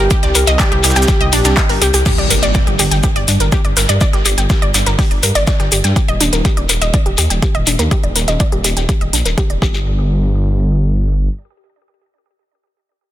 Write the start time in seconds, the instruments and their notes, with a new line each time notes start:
Already playing: analog synth lead G4
0.00 synth arpeggio sound A#4 A#5
0.11 synth arpeggio sound G4 G5, kick, closed hi-hat, shaker, shekere
0.23 detuned saw bass C2, synth arpeggio sound D5 D6, snare, closed hi-hat
0.35 detuned saw bass C2, synth arpeggio sound A#4 A#5, open hi-hat, shekere, shaker
0.47 detuned saw bass C2, synth arpeggio sound D#5 D#6, closed hi-hat, shekere
0.59 analog synth lead G4, synth arpeggio sound D5 D6, kick, snare, clap, closed hi-hat, shekere, shaker
0.72 detuned saw bass C2, synth arpeggio sound G4 G5, closed hi-hat
0.83 detuned saw bass C2, synth arpeggio sound G4 G5, snare, open hi-hat, shekere, shaker
0.90 snare, shaker
0.96 detuned saw bass C2, synth arpeggio sound G5 G6, snare, closed hi-hat, shekere, shaker
1.02 snare, shaker
1.08 synth arpeggio sound G4 G5, kick, snare, closed hi-hat, shekere, shaker
1.21 detuned saw bass C2, synth arpeggio sound D#5 D#6, closed hi-hat
1.32 detuned saw bass A#1, synth arpeggio sound D4 D5, open hi-hat, shekere
1.45 detuned saw bass C2, synth arpeggio sound D4 D5, snare, closed hi-hat, shekere, shaker
1.57 synth arpeggio sound D#5 D#6, kick, clap, closed hi-hat, shekere
1.69 detuned saw bass G1, synth arpeggio sound A#4 A#5, closed hi-hat, open hi-hat
1.81 detuned saw bass C2, synth arpeggio sound G4 G5, snare, open hi-hat, shekere
1.94 detuned saw bass C2, synth arpeggio sound G4 G5, snare, open hi-hat, shaker, shekere
2.06 synth arpeggio sound G4, kick, closed hi-hat, crash, impact, shekere, shaker
2.18 detuned saw bass G1, synth arpeggio sound D5, closed hi-hat
2.30 detuned saw bass G1, synth arpeggio sound A#4, open hi-hat, shekere, shaker
2.42 detuned saw bass G1, synth arpeggio sound D5, closed hi-hat, shekere
2.54 synth arpeggio sound D5, kick, snare, closed hi-hat, shekere, shaker
2.67 detuned saw bass G1, synth arpeggio sound G4, closed hi-hat
2.79 detuned saw bass G1, synth arpeggio sound G4, open hi-hat, shekere
2.91 detuned saw bass G1, synth arpeggio sound G5, closed hi-hat, shekere
3.03 synth arpeggio sound G4, kick, closed hi-hat, shekere, shaker
3.16 detuned saw bass G1, synth arpeggio sound D5, closed hi-hat
3.28 detuned saw bass G2, synth arpeggio sound D4, open hi-hat, shaker, shekere
3.40 detuned saw bass G1, synth arpeggio sound A#4, closed hi-hat, shekere
3.52 synth arpeggio sound G4, kick, closed hi-hat, shaker, shekere
3.65 detuned saw bass G1, synth arpeggio sound D5, closed hi-hat
3.77 detuned saw bass G1, synth arpeggio sound A#4, snare, open hi-hat, shaker, shekere
3.89 detuned saw bass G2, synth arpeggio sound D5, closed hi-hat, shekere
4.01 synth arpeggio sound D5, kick, closed hi-hat, shekere, shaker
4.13 detuned saw bass G1, synth arpeggio sound G4, snare, closed hi-hat
4.25 detuned saw bass G1, synth arpeggio sound G4, open hi-hat, shekere, shaker
4.38 detuned saw bass G1, synth arpeggio sound G5, closed hi-hat, shekere
4.50 synth arpeggio sound G4, kick, snare, closed hi-hat, shaker, shekere
4.62 detuned saw bass G1, synth arpeggio sound D5, closed hi-hat
4.74 detuned saw bass G1, synth arpeggio sound D4, snare, open hi-hat, shaker, shekere
4.86 detuned saw bass G1, synth arpeggio sound A#4, closed hi-hat, shekere
4.99 synth arpeggio sound G4, kick, closed hi-hat, open hi-hat, shekere
5.11 detuned saw bass G1, synth arpeggio sound D5, closed hi-hat
5.23 detuned saw bass G2, synth arpeggio sound A#4, open hi-hat, shekere, shaker
5.35 detuned saw bass G1, synth arpeggio sound D5, closed hi-hat, shekere
5.47 synth arpeggio sound D5, kick, snare, closed hi-hat, shekere, shaker
5.60 detuned saw bass G1, synth arpeggio sound G4, snare, closed hi-hat
5.72 detuned saw bass G1, synth arpeggio sound G4, open hi-hat, shaker, shekere
5.84 detuned saw bass G2, synth arpeggio sound G5, snare, closed hi-hat, shekere
5.96 synth arpeggio sound G4, kick, closed hi-hat, shekere
6.08 detuned saw bass D#1, synth arpeggio sound D#5, closed hi-hat
6.21 detuned saw bass D#1, synth arpeggio sound D4, open hi-hat, shekere
6.33 detuned saw bass D#1, synth arpeggio sound A#4, closed hi-hat, shekere
6.45 synth arpeggio sound G4, kick, closed hi-hat, shekere
6.57 detuned saw bass D#1, synth arpeggio sound D5, closed hi-hat
6.69 detuned saw bass D#1, synth arpeggio sound A#4, open hi-hat, shekere
6.82 detuned saw bass D#1, synth arpeggio sound D#5, closed hi-hat, shekere
6.94 synth arpeggio sound D5, kick, closed hi-hat, shekere
7.06 detuned saw bass D#1, synth arpeggio sound G4, closed hi-hat
7.17 detuned saw bass D#2, synth arpeggio sound G4, open hi-hat, shekere
7.30 detuned saw bass D#1, synth arpeggio sound G5, closed hi-hat, shekere
7.42 synth arpeggio sound G4, kick, closed hi-hat, shekere
7.55 detuned saw bass D#1, synth arpeggio sound D#5, closed hi-hat
7.66 detuned saw bass D#1, synth arpeggio sound D4, open hi-hat, shekere
7.79 detuned saw bass D#2, synth arpeggio sound A#4, closed hi-hat, shekere
7.91 synth arpeggio sound G4, kick, closed hi-hat, shekere
8.03 detuned saw bass D#1, synth arpeggio sound D5, closed hi-hat
8.16 detuned saw bass D#1, synth arpeggio sound A#4, open hi-hat, shekere
8.28 detuned saw bass D#1, synth arpeggio sound D#5, closed hi-hat, shekere
8.40 synth arpeggio sound D5, kick, closed hi-hat, shekere
8.52 detuned saw bass D#1, synth arpeggio sound G4, closed hi-hat
8.64 detuned saw bass D#1, synth arpeggio sound G4, open hi-hat, shekere
8.77 detuned saw bass D#1, synth arpeggio sound G5, closed hi-hat, shekere
8.89 synth arpeggio sound G4, kick, closed hi-hat, shekere
9.01 detuned saw bass D#1, synth arpeggio sound D#5, closed hi-hat
9.13 detuned saw bass A#1, synth arpeggio sound D4, open hi-hat, shekere
9.25 detuned saw bass D#1, synth arpeggio sound A#4, closed hi-hat, shekere
9.38 synth arpeggio sound G4, kick, closed hi-hat, shekere
9.50 detuned saw bass D#1, synth arpeggio sound D5, closed hi-hat
9.62 detuned saw bass G1, synth arpeggio sound G4, kick, shekere
9.74 shekere